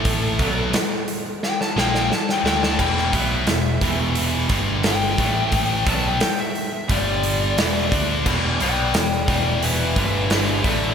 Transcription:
<<
  \new Staff \with { instrumentName = "Lead electric guitar" } { \time 4/4 \key e \minor \tempo 4 = 88 a'4 r4 g''16 a''16 g''16 g''16 a''16 g''16 g''16 a''16 | g''8 e''2 r8 g''4~ | g''8 a''16 g''8 e''8. d''2 | r8 <d'' g''>8 <d'' g''>8 <d'' g''>8 <b' e''>8 <b' e''>8 <b' e''>8 <a' d''>8 | }
  \new Staff \with { instrumentName = "Distorted electric guitar" } { \clef bass \time 4/4 \key e \minor <a, e a>8 <b, fis b>8 r4. <ais, f ais>8 r8 <d a d'>8 | <e, b, e>8 <b, fis b>8 <e, b,>8 <e, b, e>4 <g, d g>4 <a, e a>8~ | <a, e a>8 <b, fis b>8 r4 <g, d g>4 <e, b, e>8 <d a d'>8 | <e, b, e>8 <b, fis b>8 <e, b,>8 <e, b, e>4 <g, d g>4 <a, e a>8 | }
  \new Staff \with { instrumentName = "Overdriven electric guitar" } { \clef bass \time 4/4 \key e \minor <a, e a>8 <b, fis b>8 r4. <ais, f ais>8 r8 <d a d'>8 | <e, b, e>8 <b, fis b>8 <e, b,>8 <e, b, e>4 <g, d g>4 <a, e a>8~ | <a, e a>8 <b, fis b>8 r4 <g, d g>4 <e, b, e>8 <d a d'>8 | <e, b, e>8 <b, fis b>8 <e, b,>8 <e, b, e>4 <g, d g>4 <a, e a>8 | }
  \new Staff \with { instrumentName = "Picked electric bass" } { \clef bass \time 4/4 \key e \minor a,,8 b,,8 r4. ais,,8 r8 d,8 | e,,8 b,,8 e,,8 e,,4 g,,4 a,,8~ | a,,8 b,,8 r4 g,,4 e,,8 d,8 | e,,8 b,,8 e,,8 e,,4 g,,4 a,,8 | }
  \new DrumStaff \with { instrumentName = "Drums" } \drummode { \time 4/4 <hho bd>8 <hho bd>8 <hho sn>8 hho8 sn16 sn16 sn16 sn16 sn16 sn16 sn16 sn16 | <cymc bd>16 sn16 <hho bd>8 <hho sn>8 <hho bd>8 hho8 <hho bd>8 <hho sn>8 <hho bd>8 | <hho bd>8 <hho bd>8 <hho sn>8 hho8 <hho bd>8 hho8 <hho sn>8 <hho bd>8 | <cymc bd>8 hho8 <hho sn>8 <hho bd>8 hho8 <hho bd>8 <hho sn>8 <hho bd>8 | }
>>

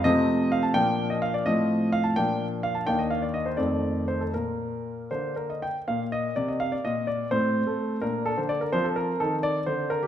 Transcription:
<<
  \new Staff \with { instrumentName = "Grand piano" } { \time 6/8 \key bes \major \tempo 4. = 84 << { ees''4 f''16 a''16 g''8. ees''16 f''16 d''16 | ees''4 f''16 a''16 g''4 f''16 a''16 | g''16 ees''16 f''16 d''16 ees''16 c''16 d''4 c''16 a'16 | bes'4. c''8 bes'16 ees''16 g''8 |
f''8 ees''8 d''16 ees''16 f''16 d''16 ees''8 d''8 | c''4. bes'8 a'16 c''16 d''16 bes'16 | c''16 a'16 bes'8 a'8 d''8 c''8 bes'16 g'16 | } \\ { r2. | r2. | r2. | r2. |
bes2. | c'4. d'4. | c'2. | } >> }
  \new Staff \with { instrumentName = "Grand piano" } { \clef bass \time 6/8 \key bes \major <c f a c'>4. <bes, f bes d'>4. | <a, f c' f'>4. <bes, f bes d'>4. | <ees, ees bes d'>4. <f, ees a c'>4. | bes,4. <d bes d'>4. |
bes,4 c4 bes,4 | a,8. a8. bes,8. d8. | f4 ees4 d4 | }
>>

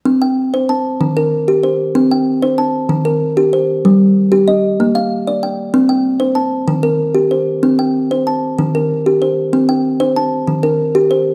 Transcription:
\new Staff \with { instrumentName = "Kalimba" } { \time 12/8 \key c \dorian \tempo 4. = 127 << { r8 g''4. a''4. bes'4. c''4~ | c''8 g''4. a''4. bes'4. c''4~ | c''8 r4. ees''4. f''4. g''4~ | g''8 g''4. a''4. bes'4. c''4~ |
c''8 g''4. a''4. bes'4. c''4~ | c''8 g''4. a''4. bes'4. c''4 | } \\ { c'4 r8 c''4 r8 ees4 r8 g'4 r8 | c'4 r8 c''4 r8 ees4 r8 g'4 r8 | g4 r8 g'4 r8 bes4 r8 d''4 r8 | c'4 r8 c''4 r8 ees4 r8 g'4 r8 |
c'4 r8 c''4 r8 ees4 r8 g'4 r8 | c'4 r8 c''4 r8 ees4 r8 g'4 r8 | } >> }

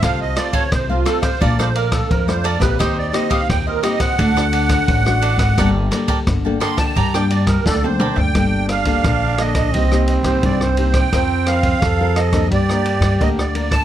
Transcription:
<<
  \new Staff \with { instrumentName = "Accordion" } { \time 4/4 \key g \minor \tempo 4 = 86 << { r1 | r1 | r2. d''16 c''8 g''16~ | g''8 f''4 ees''4 ees''16 c''16 d''16 c''8 g''16~ |
g''8 f''4 ees''8 d''4 ees''16 d''8 a''16 | } \\ { f''16 ees''16 d''16 cis''16 c''16 f'16 a'16 c''16 d''16 c''16 bes'16 a'16 bes'16 c''16 d''16 b'16 | c''16 d''16 ees''16 f''16 g''16 bes'16 ees''16 fis''2~ fis''16~ | fis''16 r4 r16 c'''16 a''16 bes''16 g''16 d''16 bes'16 a'8 r8 | r1 |
r1 | } >> }
  \new Staff \with { instrumentName = "Cavaquinho" } { \time 4/4 \key g \minor <f' a' c'' f''>8 <f' a' c'' f''>16 <f' a' c'' f''>16 r16 <a' c'' f''>16 <f' a' c'' f''>16 <a' c'' f''>16 <a' d'' f'' bes''>16 <a' d'' f'' bes''>16 <d'' f'' bes''>8. <d'' f'' bes''>16 <a' d'' f'' bes''>16 <d'' f'' bes''>16 | <ees' g' c'' ees''>8 <ees' g' c'' ees''>16 <ees' g' c'' ees''>16 r16 <g' c'' ees''>16 <ees' g' c'' ees''>16 <g' c'' ees''>16 <d' a' d'' fis''>16 <d' a' d'' fis''>16 <d' a' d'' fis''>8. <a' d'' fis''>16 <d' a' d'' fis''>16 <a' fis''>16 | <bes' d'' g'' a''>8 <bes' d'' g'' a''>16 <bes' d'' g'' a''>16 r16 <d'' g'' a''>16 <bes' d'' g'' a''>16 <d'' g'' a''>16 <bes' d'' g'' a''>16 <bes' d'' g'' a''>16 <bes' d'' g'' a''>8. <d'' g'' a''>16 <bes' d'' g'' a''>16 <d'' g'' a''>16 | r1 |
r1 | }
  \new Staff \with { instrumentName = "Trombone" } { \time 4/4 \key g \minor r1 | r1 | r1 | d'2 c'2 |
c'4 a'4 g'4. r8 | }
  \new Staff \with { instrumentName = "Nylon-string guitar" } { \time 4/4 \key g \minor << { <a c' f'>16 r16 <a c' f'>8 r16 <a c' f'>16 <a c' f'>16 r16 <a d' f'>16 <a d' f'>4 <a d' f'>8 <bes c' g'>16~ | <bes c' g'>8 <bes c' g'>4 <bes c' g'>8 <a d' fis'>16 <a d' fis'>4 <a d' fis'>8. | <bes d' a'>8 <bes d' a'>8. <bes d' a'>16 <bes d' a'>8 r16 <bes d'>4 <bes d' a'>8. | <bes d' a'>8. <bes d' a'>8. <bes a'>8 <bes ees' g'>16 <bes ees' g'>8 <bes ees' g'>8. <bes ees' g'>8 |
<c' f' bes'>8 <c' f' bes'>8 r16 <c' f' bes'>8 <bes d' bes'>8 <bes d' bes'>8. <bes d' bes'>16 r16 <bes d' bes'>8 | } \\ { c4 c4 bes,4 f,4 | ees4 bes,4 d4 a,4 | g4 d4 g4 d4 | g4 d4 c4 g,4 |
f4 c4 g4 d4 | } >> }
  \new Staff \with { instrumentName = "Upright bass" } { \clef bass \time 4/4 \key g \minor c,8 r8 c,8 r8 bes,,4 f,8. bes,,16 | ees,8 r8 ees,8 r8 d,4 a,,8. aes,,16 | g,,8 r8 g,,8 r8 g,4 d,8. d,16 | g,,4 bes,,4 c,8. c,16 c,4 |
f,4 f,4 g,8. g,16 d,4 | }
  \new DrumStaff \with { instrumentName = "Drums" } \drummode { \time 4/4 <bd cymr ss>8 <cymr ss>16 <bd cymr>16 <bd cymr ss>8 <cymr ss>16 <bd cymr ss>16 <bd cymr>16 ss16 cymr16 <bd cymr ss>16 <bd cymr>16 ss16 cymr16 <bd cymr ss>16 | <bd cymr ss>8 <cymr ss>16 <bd cymr>16 <bd cymr ss>8 <cymr ss>16 <bd cymr ss>16 <bd cymr>16 ss16 cymr16 <bd cymr ss>16 <bd cymr>16 ss16 cymr16 <bd cymr ss>16 | <bd cymr ss>8 <cymr ss>16 <bd cymr>16 <bd cymr ss>8 <cymr ss>16 <bd cymr ss>16 <bd cymr>16 ss16 cymr16 <bd cymr ss>16 <bd sn>16 tommh16 toml16 tomfh16 | <bd cymr ss>8 <cymr ss>16 <bd cymr>16 <bd cymr ss>8 <cymr ss>16 <bd cymr ss>16 <bd cymr>16 ss16 cymr16 <bd cymr ss>16 <bd cymr>16 ss16 cymr16 <bd cymr ss>16 |
<bd cymr ss>8 <cymr ss>16 <bd cymr>16 <bd cymr ss>8 <cymr ss>16 <bd cymr ss>16 <bd cymr>16 ss16 cymr16 <bd cymr ss>16 <bd cymr>16 ss16 cymr16 <bd cymr ss>16 | }
>>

